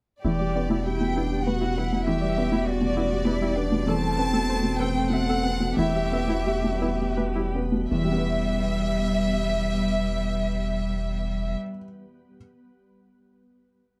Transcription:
0.23 E1 E2 G3 B3 E4 G4 B4 D5
0.39 G3 D5
0.55 B3 B4 D5
0.70 B2 E4
0.85 G3 E4 G4 G5
1.01 B2
1.16 B3 D4 E4 B4
1.32 G3
1.45 B2 F#4 B4 F#5
1.61 G3 E4
1.77 B3 E4 B4
1.92 B2
2.06 E2 E4 G4 E5
2.21 G3 D5
2.37 B3 B4 D5
2.52 B2 E4
2.65 G3 F#4 G4 D5
2.81 B2
2.97 B3 E4 B4
3.12 G3
3.25 B2 E4 B4
3.41 G3 E4
3.56 B3 D4 B4
3.72 B2
3.86 E2 A3 C4 A4 A5
4.02 A3 A5
4.18 C4 B4 A5
4.33 B2 A4
4.49 A3 C5
4.63 B2
4.79 C4 A4 B4 G5
4.95 A3
5.10 B2 E5 F#5
5.26 A3 A4
5.43 C4 B4
5.60 B2
5.76 E1 E2 G3 B3 E4 G4 B4 E5
5.94 G3 E5
6.12 B3 B4 E5
6.28 B2 E4
6.46 G3 G4
6.64 B2
6.82 B3 E4 B4
7.00 G3
7.17 B2 B4
7.35 G3 E4
7.55 B3 B4
7.72 B2
7.89 E1 E2 G3 B3 B4 E5
7.98 E3
8.04 G3
8.12 B3
8.18 B4

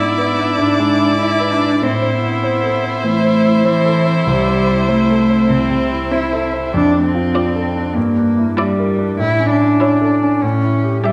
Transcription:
Already playing: G#2 B3 D4 E4 D5
0.18 B4
0.38 D4
0.59 G#2 D4
0.79 G#3
0.99 E4
1.20 E4 D5
1.40 B4
1.51 D4
1.61 D4
1.82 A2 C4 E4 C5
2.02 C4
2.13 B3
2.22 E4
2.43 C5
2.63 A4
2.84 C4
3.04 E3 A3
3.24 C4
3.45 E4
3.65 E3 C5
3.86 A4
4.06 C4
4.26 C2 G3
4.47 C4
4.68 E4
4.88 A3 C5
5.09 A4
5.30 C4
5.50 C2 C4
5.70 C3
5.91 E4
6.12 E4 C5
6.32 A4
6.53 C4
6.74 F2 D4
6.94 D4
7.04 C4
7.15 F4
7.35 F4 D5
7.56 A4
7.76 D4
7.96 G2 A#3
8.17 D4
8.37 E4
8.57 G3 E4 D5
8.79 A#4
8.98 D4
9.19 A2 E4
9.40 C#4
9.50 D4
9.60 E4
9.80 E4 C#5
10.01 A4
10.22 C#4
10.42 A2 C#4
10.64 E4
10.84 G4
11.04 G3 G4 E5

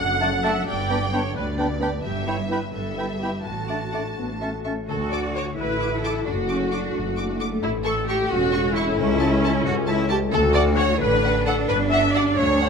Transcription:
Already playing: F#2 F#3 A3 D4 F#5
0.00 F#1 F#2 A4 F#5
0.21 A3 D4 A5 D6
0.43 A3 D4 E5 A5 D6
0.67 G1 G2 D5 G5
0.88 D3 B3 D4 G5 B5
1.11 B3 D4 C#5 G5 B5
1.35 D2 G4 B4 D5
1.58 B3 D4 G5 B5
1.78 B3 D4 G5
1.83 G5 B5
2.03 G1 G2 G4 E5
2.24 G3 B3 E4 C#5 E5 B5
2.28 G5
2.48 B3 E4 B4 E5 G5
2.53 B5
2.73 G1 G2 A4 B4 E5
2.95 B3 E4 E5 G5
3.00 B5
3.19 B3 E4 G4 E5 B5
3.23 G5
3.44 A1 A2 F#4 A5
3.68 A3 D4 F#5 A5 D6
3.92 A3 D4 D5 F#5 A5 D6
4.16 A1 A2 B3
4.41 A3 C#4 E5 A5 C#6
4.64 A3 C#4 E4 C#5 E5 A5 C#6
4.88 D2 D3 F#4 A4
5.11 A3 D5 D6
5.35 A4 C#5 D6
5.57 A1 E4 F#4 B4
5.81 F#5 D6
6.02 A4 D6
6.26 F#1 F#2 D4 F#4
6.48 A3 C#4 D6
6.71 D4 A4 D6
6.94 F#1 A3 D4
7.17 D5 D6
7.40 A4 D6
7.62 A1 A2 E4
7.84 A3 A4 C#6
8.06 G4 A4 C#6
8.30 E1 C#4 F#4
8.53 C#5 C#6
8.75 E4 A4 C#6
8.98 C#2 C#3 C#4 E4
9.20 A3 A5
9.42 A4 A5
9.65 C#2 E4 F#4
9.87 E4 E5 A5
10.09 G4 A4 A5
10.32 D2 D3 F#4 A4
10.54 D4 D5 F#5
10.77 A4 C#5 F#5
11.00 A1 D4 B4 D5
11.23 F#5
11.46 A4 D5 F#5
11.68 G1 G2 B4
11.91 G3 E5 F#5
12.14 F#4 D5 F#5
12.36 D2 G4 C#5
12.61 F#5

